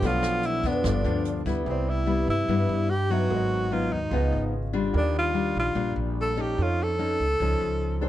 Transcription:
0.00 B1 B2 F3 A3 F4 A4 C#5, kick, closed hi-hat
0.04 D4 F4 D5
0.23 cross-stick, closed hi-hat
0.43 E4, closed hi-hat
0.63 F2 F3 B3 D4, kick, closed hi-hat
0.68 D4
0.82 G1 G2 F4 A4 B4, kick, cross-stick, closed hi-hat
0.87 D5
1.04 D2 F3 B3 D4, closed hi-hat
1.25 closed hi-hat
1.46 G3 B3 E4, kick, closed hi-hat
1.64 C2 C3 E4 G4 B4
1.69 C4 D5
1.90 E4
2.06 G3 B3 E4
2.28 G2 E4
2.48 G2 G3 B3 E4
2.69 G2
2.90 G4
3.09 F#3 B3 D#4 E4 F#4 G4 B4 E5
3.29 G#1 G#2 F#4 A#4 B4
3.35 D#5
3.71 F#3 B3 D#4 F4
3.92 D#2 D#4
4.10 C#2 C#3 F3 B3 D#4 F4 G#4 B4
4.15 D#5
4.32 G#1
4.73 G3 D4 F4
4.91 D#2 D#3 F4 G4
4.96 D4 A#4 D5
5.19 F4
5.34 G3 D4 F4
5.55 A#1
5.59 F4
5.75 A#1 A#2 G3 D4 F4
5.96 A#1
6.21 A4
6.37 C#4 D#4 A4
6.41 G4
6.55 F2 F3 D#4
6.59 F4 A4 C#5
6.83 A4
6.99 C#4 D#4 A4
7.20 C#2
7.40 C#2 F3 C#4 D#4 A4
7.61 C#2
8.00 D4 D#4 G#4 A4 C5 C#5

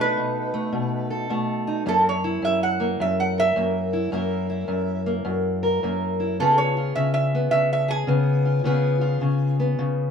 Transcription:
Already playing: B2 A3 A4
0.00 D#4 B4
0.17 B2
0.54 A3
0.72 B2
1.10 A4
1.30 B2 A3
1.67 D#4
1.86 F#2 A#3 E4 A4
2.09 C#5
2.24 E4
2.42 F#2 E5
2.63 F#5
2.80 A#3
3.00 F#2 E5
3.20 F#5
3.38 A#4 E5
3.56 F#2 A#3
3.93 E4
4.12 F#2 A#3 E4 A#4
4.50 E4
4.68 F#2
5.06 A#3
5.25 F#2
5.63 A#4
5.83 F#2 A#3
6.20 E4
6.40 C#3 B3 F4 G#4 A4
6.58 C#5
6.77 F4
6.96 C#3 E5
7.14 E5
7.35 B3
7.51 C#3 E5
7.73 E5
7.88 G#4 G#5
8.07 C#3 B3
8.45 F4
8.64 C#3 B3 F4 G#4
9.01 F4
9.21 C#3
9.60 B3
9.79 C#3

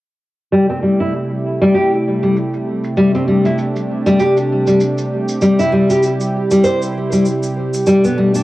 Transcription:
0.51 C3 G3 A3 E4 G4, shaker
0.70 C4, shaker
0.83 G3
1.00 E4, shaker
1.14 shaker
1.31 shaker
1.62 G3, shaker
1.74 G4, shaker
1.93 shaker
2.23 G3, shaker
2.36 shaker
2.54 shaker
2.84 shaker
2.97 G3 D4, shaker
3.15 C4, shaker
3.28 G3
3.45 E4, shaker
3.58 shaker
3.76 shaker
4.06 G3, shaker
4.19 G4, shaker
4.37 shaker
4.67 G3, shaker
4.81 shaker
4.98 shaker
5.29 shaker
5.42 G3 E4, shaker
5.59 E4, shaker
5.72 G3
5.90 G4, shaker
6.03 shaker
6.21 shaker
6.51 G3, shaker
6.64 C5, shaker
6.82 shaker
7.12 G3, shaker
7.26 shaker
7.43 shaker
7.74 shaker
7.87 B2 G3 A3 D4, shaker
8.04 B3, shaker
8.18 G3
8.35 D4, shaker

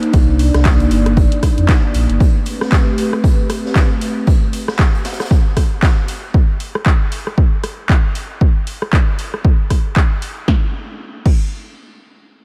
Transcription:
Already playing: A#3 D4 D#4 D5
0.03 closed hi-hat
0.13 C2, kick, closed hi-hat
0.39 closed hi-hat, open hi-hat
0.54 C2, cross-stick, snare, closed hi-hat
0.65 kick, snare, clap, closed hi-hat
0.80 closed hi-hat
0.91 G1, closed hi-hat, open hi-hat
1.06 cross-stick, closed hi-hat
1.17 kick, closed hi-hat
1.32 closed hi-hat
1.43 kick, cross-stick, closed hi-hat, open hi-hat
1.58 F2, closed hi-hat
1.68 kick, snare, clap, closed hi-hat
1.94 A#1, closed hi-hat, open hi-hat
2.10 G1, closed hi-hat
2.20 A3 C4 G4 B4, kick, closed hi-hat
2.46 closed hi-hat, open hi-hat
2.61 cross-stick, snare
2.72 kick, snare, clap, closed hi-hat
2.98 closed hi-hat, open hi-hat
3.13 cross-stick
3.24 kick, closed hi-hat
3.50 cross-stick, closed hi-hat, open hi-hat
3.66 snare
3.75 kick, snare, clap, closed hi-hat
4.01 closed hi-hat, open hi-hat
4.27 kick, closed hi-hat
4.53 closed hi-hat, open hi-hat
4.68 cross-stick, snare
4.78 kick, snare, clap, closed hi-hat
4.95 closed hi-hat
5.05 snare, closed hi-hat, open hi-hat
5.13 snare, closed hi-hat
5.20 cross-stick, snare, closed hi-hat
5.25 snare, closed hi-hat
5.31 kick, closed hi-hat
5.57 kick, cross-stick, closed hi-hat, open hi-hat
5.83 kick, snare, clap, closed hi-hat
6.08 closed hi-hat, open hi-hat
6.34 kick
6.60 open hi-hat
6.75 cross-stick
6.86 kick, clap
7.12 open hi-hat
7.27 cross-stick
7.38 kick
7.64 cross-stick, open hi-hat
7.89 kick, clap
8.15 open hi-hat
8.41 kick
8.67 open hi-hat
8.82 cross-stick
8.93 kick, clap
9.19 open hi-hat
9.34 cross-stick
9.45 kick
9.70 kick, cross-stick, open hi-hat
9.96 kick, clap
10.22 open hi-hat
10.48 kick, snare
11.26 kick, crash

